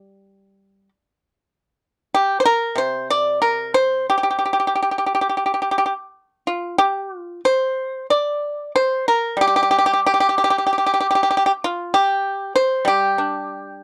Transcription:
pipa
Already playing: G3
2.14 G4
2.40 C5
2.45 A#4
2.75 C3 C5
3.10 D5
3.42 A#4
3.74 C5
4.10 G4
4.18 G4
4.23 G4
4.31 G4
4.39 G4
4.46 G4
4.53 G4
4.60 G4
4.67 G4
4.75 G4
4.83 G4
4.91 G4
4.98 G4
5.06 G4
5.15 G4
5.21 G4
5.29 G4
5.37 G4
5.46 G4
5.54 G4
5.62 G4
5.71 G4
5.78 G4
5.86 G4
6.47 F4
6.78 G4
7.17 F4
7.45 C5
8.10 D5
8.76 C5
9.08 A#4
9.37 G3
9.41 G4
9.48 G4
9.56 G4
9.63 G4
9.71 G4
9.79 G4
9.86 G4
9.93 G4
10.06 G4
10.14 G4
10.20 G4
10.29 G4
10.38 G4
10.44 G4
10.50 G4
10.58 G4
10.67 G4
10.73 G4
10.78 G4
10.86 G4
10.94 G4
11.01 G4
11.11 G4
11.15 G4
11.23 G4
11.31 G4
11.37 G4
11.46 G4
11.64 F4
11.94 G4
12.56 C5
12.85 G3 G4
13.18 D4

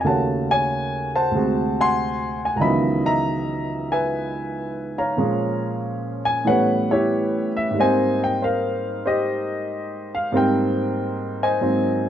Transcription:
grand piano
0.01 D#2 C#3 A3 G#5
0.05 F#4 C#5 F#5 A5
0.51 C#5 G#5
1.15 C5 F#5 A5
1.31 D2 C3 G#3
1.37 F#4
1.81 F#5 G#5 C6
2.45 G#5
2.56 C#2 C#3 A#5
2.61 E3 F#3 D#5 E5 B5
2.65 D#3 B3
3.06 D#5 E5 A#5
3.92 B4 E5 G#5
4.98 C#5 F5 A#5
5.17 A#2 F3 G#3 C#4
6.25 G#5
6.45 A2 E3 G3 A3 B3 B4 C#5 F#5
6.49 C#4
6.91 E4 G4 C#5
7.56 E5
7.71 G#2 G3
7.78 A#3 C4 C5 D#5 G#5
8.24 G5
8.42 A#4 C5 F5
9.06 G4 C5 D#5
10.15 F5
10.32 G#2 G3 A#3 C4 A#4 C5
10.37 G5
11.43 C5 D#5 G#5
11.61 G#2 F#3 A#3 C4

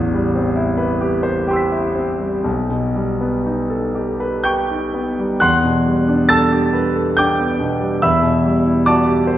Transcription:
grand piano
Already playing: A1 E2
0.13 G3
0.35 C4
0.56 E4
0.77 B4
1.01 G4
1.23 C5
1.47 G4 G5 C6
1.53 E6 B6
1.72 E4
1.95 C4
2.20 G3
2.44 B1
2.69 B2
2.95 G3
3.21 B3
3.46 D#4
3.70 A4
3.95 G4
4.20 B4
4.44 G4 G5 C#6 G6
4.70 D#4
4.94 B3
5.19 G3
5.40 E2 F#5 C6 F#6
5.64 B2
5.86 G3
6.08 D4
6.29 A4 A5 E6 A6
6.52 G4
6.73 B4
6.96 A4
7.17 D4 G5 D6 G6
7.39 B3
7.60 B2
7.81 G3
8.02 E2 E5 B5 E6
8.22 B2
8.45 G3
8.66 E4
8.86 F#4 D5 A5 D6
9.06 G4
9.27 C5

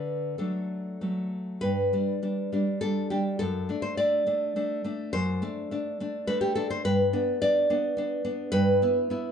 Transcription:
nylon-string guitar
Already playing: D3 D4 B4
0.38 F#3 A3 D4 A4
1.01 F#3 A3
1.61 G2 B4
1.93 G3 D4
2.23 G3 D4
2.52 G3 D4
2.81 G3 D4 A4
3.10 G3 D4 G4
3.39 F#2 A4
3.69 A3 D4
3.82 C5
3.97 A3 D4 D5
4.27 A3 D4
4.56 A3 D4
4.84 A3 D4
5.13 F#2 C5
5.42 A3 D4
5.71 A3 D4
6.00 A3 D4
6.27 A3 D4 B4
6.41 G4
6.55 A3 D4 A4
6.70 C5
6.85 G2 B4
7.13 B3 D4
7.41 B3 D4 D5
7.70 B3 D4
7.97 B3 D4
8.25 B3 D4
8.52 G2 B4
8.82 B3 E4
9.10 B3 E4

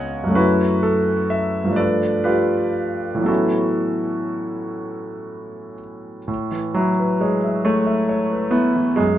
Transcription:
grand piano
Already playing: C#2 G#3 B3 C#4 D#4 C#5 D#5 F#5 G#5
0.24 F#2 F#3
0.28 A3 C#4
0.35 E4 F#4 B4
0.83 A4
1.30 E5
1.64 G2 F3
1.70 A3 D4
1.76 A4 B4 D5
2.24 F4 G4 B4
3.15 A2 E3
3.20 F#3 B3
3.25 C#4 E4 F#4 A4
6.28 A2
6.51 E3
6.74 F#3 E4
7.00 B4
7.20 G#3 C#5
7.44 E5
7.65 A3 C#5
7.86 E5
8.09 C#5
8.32 B4
8.51 B3 E4
8.75 E3
8.96 F#2 G#3

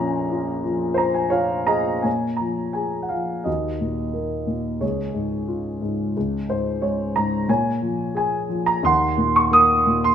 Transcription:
grand piano
Already playing: A#1 A#2 F3 C#5 A#5
0.00 C#4
0.32 F4
0.64 F3
0.94 C5 A#5
1.14 G#5
1.30 F4 C#5 F5
1.67 G#4 D#5 A#5
2.02 A#2 C#5 G#5
2.37 F3 A#5
2.73 G#4 G#5
3.02 F#5
3.09 F3 F5
3.44 D#2 F#4 D#5
3.81 A#2
4.13 A#3
4.47 A#2
4.80 C#2 G#4 C#5
5.14 G#2
5.48 F4
5.82 G#2
6.17 C#2
6.49 G#2 C5
6.82 G#3 C#5
7.16 G#2 A#5
7.49 A#2 C#5 G#5
7.82 F3
8.15 G#4 G#5
8.49 F3
8.66 A#5
8.83 D#2 F#5 C6
9.18 A#2
9.36 C#6
9.51 A#3 D#6
9.86 A#2
10.04 C6

